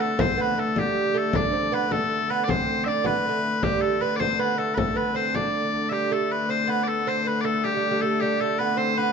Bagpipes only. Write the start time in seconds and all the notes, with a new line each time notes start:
0.00 A4
0.20 C5
0.41 B4
0.59 A4
0.79 G4
1.18 A4
1.36 D5
1.74 B4
1.92 A4
2.30 B4
2.44 D5
2.50 C5
2.84 D5 E5
3.06 B4
3.63 G4
3.81 A4
4.01 B4
4.16 C5 D5
4.39 B4
4.58 A4
4.74 A4 B4
4.97 B4
5.16 C5
5.35 D5
5.89 G4 E5
6.12 A4
6.32 B4
6.50 C5
6.70 B4
6.83 D5
6.88 A4
7.08 C5
7.27 B4
7.41 A4 D5
7.64 G4
8.01 A4
8.20 G4
8.40 A4
8.59 B4
8.78 C5
8.98 B4